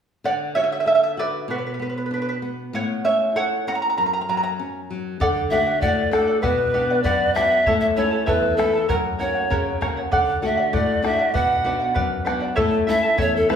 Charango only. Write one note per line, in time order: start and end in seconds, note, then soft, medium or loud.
0.25 0.34 D5 medium
0.25 0.33 F#5 medium
0.55 0.63 C#5 medium
0.55 0.62 E5 medium
0.64 0.71 E5 medium
0.72 0.79 E5 medium
0.80 0.86 E5 medium
0.87 0.94 E5 medium
0.95 1.02 E5 medium
1.03 1.11 E5 medium
1.19 1.48 B4 medium
1.19 1.47 D5 medium
1.50 1.57 F#4 soft
1.50 1.57 B4 medium
1.58 1.65 B4 soft
1.67 1.73 B4 soft
1.74 1.80 B4 soft
1.82 1.88 B4 soft
1.89 1.96 B4 soft
1.98 2.04 B4 soft
2.06 2.12 B4 soft
2.14 2.19 B4 soft
2.22 2.27 B4 soft
2.29 2.35 B4 soft
2.75 3.03 C#5 medium
2.75 3.03 F#5 medium
3.05 3.33 C#5 medium
3.05 3.36 E5 medium
3.36 3.65 C#5 medium
3.36 3.67 F#5 medium
3.68 3.74 F#5 medium
3.68 3.74 A#5 medium
3.75 3.81 A#5 medium
3.82 3.89 A#5 soft
3.90 3.96 A#5 soft
3.98 4.04 A#5 soft
4.06 4.12 A#5 soft
4.13 4.20 A#5 soft
4.21 4.28 A#5 soft
4.29 4.36 A#5 medium
4.37 4.42 A#5 medium
4.43 4.50 A#5 medium
5.21 5.50 A4 medium
5.21 5.51 D5 medium
5.21 5.52 F#5 medium
5.51 5.67 A4 medium
5.51 5.67 D5 medium
5.51 5.65 F#5 medium
5.67 5.81 D5 soft
5.67 5.81 F#5 soft
5.82 6.10 A4 medium
5.82 6.11 D5 medium
5.82 6.12 F#5 medium
6.11 6.27 A4 medium
6.11 6.28 D5 medium
6.11 6.26 F#5 medium
6.27 6.42 D5 soft
6.27 6.42 F#5 soft
6.42 6.72 B4 medium
6.42 6.73 D5 medium
6.42 6.74 F#5 medium
6.74 6.89 B4 medium
6.74 6.89 D5 medium
6.74 6.89 F#5 medium
6.90 7.04 D5 soft
6.90 7.05 F#5 soft
7.05 7.35 B4 medium
7.05 7.35 D5 medium
7.05 7.36 F#5 medium
7.36 7.51 B4 medium
7.36 7.51 D5 medium
7.36 7.50 F#5 medium
7.51 7.67 D5 soft
7.51 7.67 F#5 soft
7.66 7.96 E4 medium
7.66 7.96 A4 medium
7.66 7.97 C#5 medium
7.66 7.95 E5 medium
7.66 7.97 A5 medium
7.97 8.12 E4 medium
7.97 8.11 A4 medium
7.97 8.12 E5 medium
7.97 8.10 A5 medium
8.11 8.26 E4 soft
8.11 8.26 A4 soft
8.11 8.26 A5 soft
8.26 8.57 E4 medium
8.26 8.58 A4 medium
8.26 8.58 C#5 medium
8.26 8.57 E5 medium
8.26 8.58 A5 medium
8.58 8.74 E4 soft
8.58 8.73 A4 medium
8.58 8.74 E5 soft
8.58 8.72 A5 medium
8.73 8.88 E4 soft
8.73 8.89 A4 soft
8.73 8.89 A5 soft
8.88 9.17 A#4 medium
8.88 9.18 C#5 medium
8.88 9.19 F#5 medium
9.18 9.35 A#4 medium
9.18 9.35 C#5 medium
9.18 9.33 F#5 medium
9.35 9.50 C#5 soft
9.35 9.50 F#5 soft
9.51 9.80 A#4 medium
9.51 9.81 C#5 medium
9.51 9.81 F#5 medium
9.81 9.97 A#4 medium
9.81 9.97 C#5 medium
9.81 9.96 F#5 medium
9.97 10.13 C#5 soft
9.97 10.11 F#5 soft
10.11 10.41 A4 medium
10.11 10.42 D5 medium
10.11 10.42 F#5 medium
10.42 10.58 A4 soft
10.42 10.58 D5 medium
10.42 10.56 F#5 medium
10.57 10.72 D5 soft
10.57 10.72 F#5 soft
10.73 11.02 A4 medium
10.73 11.03 D5 medium
10.73 11.04 F#5 medium
11.03 11.19 A4 soft
11.03 11.19 D5 medium
11.03 11.18 F#5 medium
11.19 11.33 D5 soft
11.19 11.34 F#5 soft
11.34 11.64 B4 medium
11.34 11.65 D5 medium
11.34 11.65 F#5 medium
11.65 11.81 B4 medium
11.65 11.80 D5 medium
11.65 11.79 F#5 medium
11.80 11.94 D5 soft
11.80 11.94 F#5 soft
11.94 12.24 B4 medium
11.94 12.25 D5 medium
11.94 12.25 F#5 medium
12.25 12.41 B4 medium
12.25 12.40 D5 medium
12.25 12.39 F#5 medium
12.40 12.56 D5 soft
12.40 12.56 F#5 medium
12.56 12.86 E4 medium
12.56 12.87 A4 medium
12.56 12.87 C#5 medium
12.56 12.86 E5 medium
12.56 12.87 A5 medium
12.87 13.03 E4 medium
12.87 13.02 A4 medium
12.87 13.03 E5 medium
12.87 13.02 A5 medium
13.03 13.17 E4 soft
13.03 13.17 A4 soft
13.03 13.17 A5 soft
13.18 13.48 E4 medium
13.18 13.48 A4 medium
13.18 13.49 C#5 medium
13.18 13.47 E5 medium
13.18 13.48 A5 medium
13.48 13.56 E4 soft
13.48 13.56 A4 medium
13.48 13.56 E5 medium
13.48 13.56 A5 medium